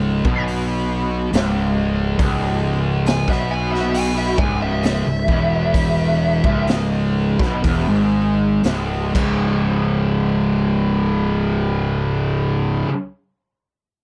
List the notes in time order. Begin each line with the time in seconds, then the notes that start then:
Already playing: C#1 C#2 C#6
0.25 B1 B2, kick
0.48 open hi-hat
1.32 C#1 C#2, snare, open hi-hat
2.18 C#1 C#2, kick, open hi-hat
3.06 G#5, snare, open hi-hat
3.28 B1 B2 E5, kick, snare
3.51 G#5
3.71 E5, snare
3.94 G#5, open hi-hat
4.18 E5
4.38 C#1 C#2 G#5, kick
4.62 E5
4.83 E5, snare, open hi-hat
5.06 C#1 C#2
5.28 E1 E2, kick
5.74 kick, open hi-hat
6.44 C#1 C#2, kick
6.67 snare, open hi-hat
7.39 B1 B2, kick, snare
7.63 E1 E2, kick, open hi-hat
7.88 G#1 G#2
8.63 C#1 C#2, snare, open hi-hat
9.14 C#1 C#2 G#2, kick, crash
9.18 C#3